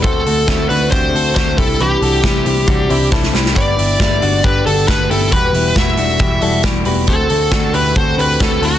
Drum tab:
HH |x-o---o-x-o-x-o-|x-o-x-o-x-o-----|x-o-x-o-x-o-x-o-|x-o-x-o-x-o-x-o-|
SD |----o-------o---|----o-------oooo|----o-------o---|----o-------o---|
BD |o---o---o---o-o-|----o---o---o---|o---o---o---o---|o---o---o---o---|

HH |x-o-x-o-x-o-x-o-|
SD |----o-------o---|
BD |o---o---o---o---|